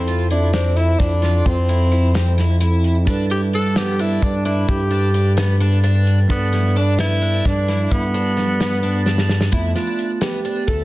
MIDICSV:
0, 0, Header, 1, 6, 480
1, 0, Start_track
1, 0, Tempo, 461184
1, 1520, Time_signature, 7, 3, 24, 8
1, 11282, End_track
2, 0, Start_track
2, 0, Title_t, "Tine electric piano"
2, 0, Program_c, 0, 4
2, 0, Note_on_c, 0, 53, 68
2, 0, Note_on_c, 0, 60, 56
2, 0, Note_on_c, 0, 64, 56
2, 0, Note_on_c, 0, 69, 68
2, 3147, Note_off_c, 0, 53, 0
2, 3153, Note_off_c, 0, 60, 0
2, 3161, Note_off_c, 0, 64, 0
2, 3168, Note_off_c, 0, 69, 0
2, 3180, Note_on_c, 0, 55, 77
2, 3194, Note_on_c, 0, 62, 67
2, 3208, Note_on_c, 0, 69, 67
2, 3223, Note_on_c, 0, 71, 78
2, 6507, Note_off_c, 0, 55, 0
2, 6514, Note_off_c, 0, 62, 0
2, 6521, Note_off_c, 0, 69, 0
2, 6529, Note_off_c, 0, 71, 0
2, 6535, Note_on_c, 0, 55, 65
2, 6548, Note_on_c, 0, 62, 61
2, 6562, Note_on_c, 0, 69, 60
2, 6573, Note_on_c, 0, 74, 71
2, 9865, Note_off_c, 0, 55, 0
2, 9871, Note_off_c, 0, 62, 0
2, 9878, Note_off_c, 0, 69, 0
2, 9884, Note_off_c, 0, 74, 0
2, 9906, Note_on_c, 0, 57, 56
2, 9913, Note_on_c, 0, 59, 46
2, 9920, Note_on_c, 0, 65, 57
2, 10147, Note_off_c, 0, 65, 0
2, 10160, Note_on_c, 0, 65, 68
2, 10606, Note_off_c, 0, 65, 0
2, 10633, Note_on_c, 0, 67, 92
2, 11111, Note_on_c, 0, 69, 81
2, 11131, Note_off_c, 0, 67, 0
2, 11282, Note_off_c, 0, 57, 0
2, 11282, Note_off_c, 0, 59, 0
2, 11282, Note_off_c, 0, 69, 0
2, 11282, End_track
3, 0, Start_track
3, 0, Title_t, "Tenor saxophone"
3, 0, Program_c, 1, 66
3, 0, Note_on_c, 1, 60, 89
3, 284, Note_off_c, 1, 60, 0
3, 323, Note_on_c, 1, 62, 81
3, 544, Note_off_c, 1, 62, 0
3, 555, Note_on_c, 1, 62, 92
3, 796, Note_on_c, 1, 64, 92
3, 811, Note_off_c, 1, 62, 0
3, 1032, Note_on_c, 1, 62, 94
3, 1048, Note_off_c, 1, 64, 0
3, 1519, Note_on_c, 1, 60, 87
3, 1535, Note_off_c, 1, 62, 0
3, 2479, Note_off_c, 1, 60, 0
3, 3445, Note_on_c, 1, 67, 89
3, 3552, Note_off_c, 1, 67, 0
3, 3690, Note_on_c, 1, 69, 95
3, 3926, Note_on_c, 1, 67, 91
3, 3942, Note_off_c, 1, 69, 0
3, 4166, Note_on_c, 1, 64, 82
3, 4182, Note_off_c, 1, 67, 0
3, 4399, Note_on_c, 1, 62, 78
3, 4415, Note_off_c, 1, 64, 0
3, 4627, Note_off_c, 1, 62, 0
3, 4633, Note_on_c, 1, 62, 75
3, 4859, Note_off_c, 1, 62, 0
3, 4877, Note_on_c, 1, 67, 94
3, 5556, Note_off_c, 1, 67, 0
3, 6568, Note_on_c, 1, 59, 95
3, 7046, Note_on_c, 1, 62, 84
3, 7061, Note_off_c, 1, 59, 0
3, 7278, Note_off_c, 1, 62, 0
3, 7284, Note_on_c, 1, 64, 107
3, 7765, Note_on_c, 1, 62, 101
3, 7781, Note_off_c, 1, 64, 0
3, 8236, Note_on_c, 1, 59, 94
3, 8252, Note_off_c, 1, 62, 0
3, 9677, Note_off_c, 1, 59, 0
3, 11282, End_track
4, 0, Start_track
4, 0, Title_t, "Twelve-string acoustic guitar"
4, 0, Program_c, 2, 25
4, 80, Note_on_c, 2, 65, 72
4, 260, Note_off_c, 2, 65, 0
4, 318, Note_on_c, 2, 64, 64
4, 499, Note_off_c, 2, 64, 0
4, 554, Note_on_c, 2, 60, 82
4, 737, Note_off_c, 2, 60, 0
4, 795, Note_on_c, 2, 64, 75
4, 1158, Note_off_c, 2, 64, 0
4, 1271, Note_on_c, 2, 65, 67
4, 1635, Note_off_c, 2, 65, 0
4, 1755, Note_on_c, 2, 64, 71
4, 1937, Note_off_c, 2, 64, 0
4, 1996, Note_on_c, 2, 64, 67
4, 2178, Note_off_c, 2, 64, 0
4, 2231, Note_on_c, 2, 60, 76
4, 2414, Note_off_c, 2, 60, 0
4, 2474, Note_on_c, 2, 64, 69
4, 2657, Note_off_c, 2, 64, 0
4, 2711, Note_on_c, 2, 64, 72
4, 3076, Note_off_c, 2, 64, 0
4, 3193, Note_on_c, 2, 62, 76
4, 3376, Note_off_c, 2, 62, 0
4, 3437, Note_on_c, 2, 64, 67
4, 3618, Note_off_c, 2, 64, 0
4, 3678, Note_on_c, 2, 62, 71
4, 3859, Note_off_c, 2, 62, 0
4, 3919, Note_on_c, 2, 59, 76
4, 4100, Note_off_c, 2, 59, 0
4, 4155, Note_on_c, 2, 62, 78
4, 4517, Note_off_c, 2, 62, 0
4, 4634, Note_on_c, 2, 64, 65
4, 4997, Note_off_c, 2, 64, 0
4, 5107, Note_on_c, 2, 62, 72
4, 5292, Note_off_c, 2, 62, 0
4, 5351, Note_on_c, 2, 62, 69
4, 5535, Note_off_c, 2, 62, 0
4, 5590, Note_on_c, 2, 59, 81
4, 5774, Note_off_c, 2, 59, 0
4, 5833, Note_on_c, 2, 62, 76
4, 6016, Note_off_c, 2, 62, 0
4, 6074, Note_on_c, 2, 62, 80
4, 6437, Note_off_c, 2, 62, 0
4, 6556, Note_on_c, 2, 62, 83
4, 6738, Note_off_c, 2, 62, 0
4, 6793, Note_on_c, 2, 64, 73
4, 6975, Note_off_c, 2, 64, 0
4, 7034, Note_on_c, 2, 62, 74
4, 7216, Note_off_c, 2, 62, 0
4, 7271, Note_on_c, 2, 59, 85
4, 7454, Note_off_c, 2, 59, 0
4, 7511, Note_on_c, 2, 62, 81
4, 7875, Note_off_c, 2, 62, 0
4, 7995, Note_on_c, 2, 64, 67
4, 8357, Note_off_c, 2, 64, 0
4, 8474, Note_on_c, 2, 62, 75
4, 8656, Note_off_c, 2, 62, 0
4, 8710, Note_on_c, 2, 62, 64
4, 8894, Note_off_c, 2, 62, 0
4, 8954, Note_on_c, 2, 59, 82
4, 9136, Note_off_c, 2, 59, 0
4, 9190, Note_on_c, 2, 62, 76
4, 9373, Note_off_c, 2, 62, 0
4, 9430, Note_on_c, 2, 62, 69
4, 9794, Note_off_c, 2, 62, 0
4, 9910, Note_on_c, 2, 64, 80
4, 10094, Note_off_c, 2, 64, 0
4, 10155, Note_on_c, 2, 62, 69
4, 10517, Note_off_c, 2, 62, 0
4, 10628, Note_on_c, 2, 59, 73
4, 10812, Note_off_c, 2, 59, 0
4, 10875, Note_on_c, 2, 62, 74
4, 11057, Note_off_c, 2, 62, 0
4, 11114, Note_on_c, 2, 57, 73
4, 11282, Note_off_c, 2, 57, 0
4, 11282, End_track
5, 0, Start_track
5, 0, Title_t, "Analog synth bass"
5, 0, Program_c, 3, 38
5, 0, Note_on_c, 3, 41, 100
5, 997, Note_off_c, 3, 41, 0
5, 1037, Note_on_c, 3, 41, 91
5, 1477, Note_off_c, 3, 41, 0
5, 1519, Note_on_c, 3, 41, 106
5, 3198, Note_on_c, 3, 43, 95
5, 3214, Note_off_c, 3, 41, 0
5, 4357, Note_off_c, 3, 43, 0
5, 4396, Note_on_c, 3, 43, 96
5, 4836, Note_off_c, 3, 43, 0
5, 4878, Note_on_c, 3, 43, 100
5, 6516, Note_off_c, 3, 43, 0
5, 6559, Note_on_c, 3, 43, 93
5, 7717, Note_off_c, 3, 43, 0
5, 7758, Note_on_c, 3, 43, 90
5, 8197, Note_off_c, 3, 43, 0
5, 8238, Note_on_c, 3, 43, 99
5, 9877, Note_off_c, 3, 43, 0
5, 9916, Note_on_c, 3, 41, 105
5, 10135, Note_off_c, 3, 41, 0
5, 11115, Note_on_c, 3, 38, 103
5, 11282, Note_off_c, 3, 38, 0
5, 11282, End_track
6, 0, Start_track
6, 0, Title_t, "Drums"
6, 77, Note_on_c, 9, 42, 64
6, 181, Note_off_c, 9, 42, 0
6, 318, Note_on_c, 9, 42, 61
6, 422, Note_off_c, 9, 42, 0
6, 555, Note_on_c, 9, 82, 38
6, 558, Note_on_c, 9, 38, 100
6, 558, Note_on_c, 9, 42, 78
6, 660, Note_off_c, 9, 82, 0
6, 662, Note_off_c, 9, 38, 0
6, 662, Note_off_c, 9, 42, 0
6, 801, Note_on_c, 9, 42, 59
6, 905, Note_off_c, 9, 42, 0
6, 1037, Note_on_c, 9, 82, 41
6, 1038, Note_on_c, 9, 38, 31
6, 1038, Note_on_c, 9, 42, 82
6, 1039, Note_on_c, 9, 36, 104
6, 1141, Note_off_c, 9, 82, 0
6, 1142, Note_off_c, 9, 38, 0
6, 1142, Note_off_c, 9, 42, 0
6, 1143, Note_off_c, 9, 36, 0
6, 1281, Note_on_c, 9, 38, 31
6, 1281, Note_on_c, 9, 42, 52
6, 1385, Note_off_c, 9, 38, 0
6, 1385, Note_off_c, 9, 42, 0
6, 1517, Note_on_c, 9, 42, 72
6, 1519, Note_on_c, 9, 36, 97
6, 1519, Note_on_c, 9, 82, 51
6, 1621, Note_off_c, 9, 42, 0
6, 1623, Note_off_c, 9, 36, 0
6, 1623, Note_off_c, 9, 82, 0
6, 1758, Note_on_c, 9, 42, 55
6, 1862, Note_off_c, 9, 42, 0
6, 1998, Note_on_c, 9, 42, 58
6, 1999, Note_on_c, 9, 82, 16
6, 2103, Note_off_c, 9, 42, 0
6, 2103, Note_off_c, 9, 82, 0
6, 2239, Note_on_c, 9, 38, 105
6, 2239, Note_on_c, 9, 42, 69
6, 2241, Note_on_c, 9, 82, 35
6, 2343, Note_off_c, 9, 38, 0
6, 2343, Note_off_c, 9, 42, 0
6, 2345, Note_off_c, 9, 82, 0
6, 2479, Note_on_c, 9, 82, 16
6, 2481, Note_on_c, 9, 38, 33
6, 2481, Note_on_c, 9, 42, 54
6, 2583, Note_off_c, 9, 82, 0
6, 2585, Note_off_c, 9, 38, 0
6, 2585, Note_off_c, 9, 42, 0
6, 2717, Note_on_c, 9, 42, 72
6, 2720, Note_on_c, 9, 82, 40
6, 2821, Note_off_c, 9, 42, 0
6, 2824, Note_off_c, 9, 82, 0
6, 2957, Note_on_c, 9, 42, 52
6, 3062, Note_off_c, 9, 42, 0
6, 3196, Note_on_c, 9, 82, 51
6, 3197, Note_on_c, 9, 36, 101
6, 3197, Note_on_c, 9, 42, 73
6, 3300, Note_off_c, 9, 82, 0
6, 3301, Note_off_c, 9, 36, 0
6, 3301, Note_off_c, 9, 42, 0
6, 3433, Note_on_c, 9, 42, 54
6, 3537, Note_off_c, 9, 42, 0
6, 3676, Note_on_c, 9, 42, 59
6, 3780, Note_off_c, 9, 42, 0
6, 3911, Note_on_c, 9, 82, 38
6, 3914, Note_on_c, 9, 38, 103
6, 3914, Note_on_c, 9, 42, 74
6, 4016, Note_off_c, 9, 82, 0
6, 4018, Note_off_c, 9, 38, 0
6, 4018, Note_off_c, 9, 42, 0
6, 4156, Note_on_c, 9, 42, 62
6, 4260, Note_off_c, 9, 42, 0
6, 4397, Note_on_c, 9, 36, 103
6, 4398, Note_on_c, 9, 42, 82
6, 4400, Note_on_c, 9, 82, 42
6, 4501, Note_off_c, 9, 36, 0
6, 4502, Note_off_c, 9, 42, 0
6, 4504, Note_off_c, 9, 82, 0
6, 4639, Note_on_c, 9, 42, 53
6, 4743, Note_off_c, 9, 42, 0
6, 4877, Note_on_c, 9, 36, 103
6, 4877, Note_on_c, 9, 42, 75
6, 4877, Note_on_c, 9, 82, 56
6, 4981, Note_off_c, 9, 36, 0
6, 4981, Note_off_c, 9, 42, 0
6, 4981, Note_off_c, 9, 82, 0
6, 5116, Note_on_c, 9, 42, 59
6, 5220, Note_off_c, 9, 42, 0
6, 5356, Note_on_c, 9, 42, 61
6, 5460, Note_off_c, 9, 42, 0
6, 5596, Note_on_c, 9, 38, 107
6, 5596, Note_on_c, 9, 42, 77
6, 5599, Note_on_c, 9, 82, 39
6, 5700, Note_off_c, 9, 38, 0
6, 5700, Note_off_c, 9, 42, 0
6, 5703, Note_off_c, 9, 82, 0
6, 5839, Note_on_c, 9, 42, 59
6, 5943, Note_off_c, 9, 42, 0
6, 6076, Note_on_c, 9, 42, 70
6, 6076, Note_on_c, 9, 82, 46
6, 6180, Note_off_c, 9, 42, 0
6, 6180, Note_off_c, 9, 82, 0
6, 6317, Note_on_c, 9, 42, 55
6, 6421, Note_off_c, 9, 42, 0
6, 6553, Note_on_c, 9, 82, 60
6, 6556, Note_on_c, 9, 42, 70
6, 6557, Note_on_c, 9, 36, 105
6, 6657, Note_off_c, 9, 82, 0
6, 6660, Note_off_c, 9, 42, 0
6, 6661, Note_off_c, 9, 36, 0
6, 6797, Note_on_c, 9, 38, 35
6, 6797, Note_on_c, 9, 42, 58
6, 6901, Note_off_c, 9, 38, 0
6, 6901, Note_off_c, 9, 42, 0
6, 7036, Note_on_c, 9, 42, 53
6, 7140, Note_off_c, 9, 42, 0
6, 7272, Note_on_c, 9, 38, 103
6, 7272, Note_on_c, 9, 42, 75
6, 7274, Note_on_c, 9, 82, 41
6, 7376, Note_off_c, 9, 38, 0
6, 7376, Note_off_c, 9, 42, 0
6, 7378, Note_off_c, 9, 82, 0
6, 7518, Note_on_c, 9, 42, 65
6, 7622, Note_off_c, 9, 42, 0
6, 7756, Note_on_c, 9, 38, 35
6, 7756, Note_on_c, 9, 42, 78
6, 7758, Note_on_c, 9, 36, 97
6, 7762, Note_on_c, 9, 82, 40
6, 7860, Note_off_c, 9, 38, 0
6, 7860, Note_off_c, 9, 42, 0
6, 7862, Note_off_c, 9, 36, 0
6, 7866, Note_off_c, 9, 82, 0
6, 8000, Note_on_c, 9, 38, 30
6, 8000, Note_on_c, 9, 42, 56
6, 8104, Note_off_c, 9, 38, 0
6, 8104, Note_off_c, 9, 42, 0
6, 8237, Note_on_c, 9, 42, 75
6, 8238, Note_on_c, 9, 36, 99
6, 8242, Note_on_c, 9, 82, 50
6, 8341, Note_off_c, 9, 42, 0
6, 8342, Note_off_c, 9, 36, 0
6, 8346, Note_off_c, 9, 82, 0
6, 8480, Note_on_c, 9, 42, 64
6, 8584, Note_off_c, 9, 42, 0
6, 8717, Note_on_c, 9, 38, 33
6, 8717, Note_on_c, 9, 42, 65
6, 8821, Note_off_c, 9, 38, 0
6, 8821, Note_off_c, 9, 42, 0
6, 8957, Note_on_c, 9, 38, 109
6, 8957, Note_on_c, 9, 42, 79
6, 8960, Note_on_c, 9, 82, 39
6, 9061, Note_off_c, 9, 38, 0
6, 9061, Note_off_c, 9, 42, 0
6, 9064, Note_off_c, 9, 82, 0
6, 9195, Note_on_c, 9, 42, 58
6, 9202, Note_on_c, 9, 82, 17
6, 9300, Note_off_c, 9, 42, 0
6, 9306, Note_off_c, 9, 82, 0
6, 9432, Note_on_c, 9, 38, 55
6, 9440, Note_on_c, 9, 82, 38
6, 9537, Note_off_c, 9, 38, 0
6, 9544, Note_off_c, 9, 82, 0
6, 9556, Note_on_c, 9, 38, 63
6, 9660, Note_off_c, 9, 38, 0
6, 9673, Note_on_c, 9, 38, 74
6, 9686, Note_on_c, 9, 82, 16
6, 9777, Note_off_c, 9, 38, 0
6, 9790, Note_off_c, 9, 82, 0
6, 9790, Note_on_c, 9, 38, 88
6, 9894, Note_off_c, 9, 38, 0
6, 9910, Note_on_c, 9, 42, 66
6, 9915, Note_on_c, 9, 36, 95
6, 10014, Note_off_c, 9, 42, 0
6, 10019, Note_off_c, 9, 36, 0
6, 10153, Note_on_c, 9, 38, 31
6, 10153, Note_on_c, 9, 42, 51
6, 10257, Note_off_c, 9, 38, 0
6, 10257, Note_off_c, 9, 42, 0
6, 10395, Note_on_c, 9, 42, 57
6, 10499, Note_off_c, 9, 42, 0
6, 10632, Note_on_c, 9, 38, 99
6, 10632, Note_on_c, 9, 42, 73
6, 10736, Note_off_c, 9, 38, 0
6, 10736, Note_off_c, 9, 42, 0
6, 10875, Note_on_c, 9, 42, 59
6, 10979, Note_off_c, 9, 42, 0
6, 11115, Note_on_c, 9, 36, 94
6, 11116, Note_on_c, 9, 42, 70
6, 11219, Note_off_c, 9, 36, 0
6, 11220, Note_off_c, 9, 42, 0
6, 11282, End_track
0, 0, End_of_file